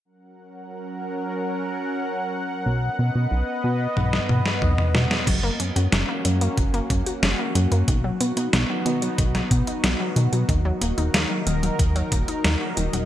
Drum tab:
CC |----------------|----------------|x---------------|----------------|
HH |----------------|----------------|x-xxx-xxxxxxx-xx|x-xxx-xxxxxxx-xx|
SD |----------------|---------o-o--oo|----o-------o---|----o----o--o---|
T1 |----------------|--------o-o-----|----------------|----------------|
T2 |----------------|------------oo--|----------------|----------------|
BD |----------------|----------------|o-------o-o-----|o-------o-o-----|

CC |----------------|
HH |x-xxx-xxxxxxx-xx|
SD |----o-------o---|
T1 |----------------|
T2 |----------------|
BD |o-------o-o-----|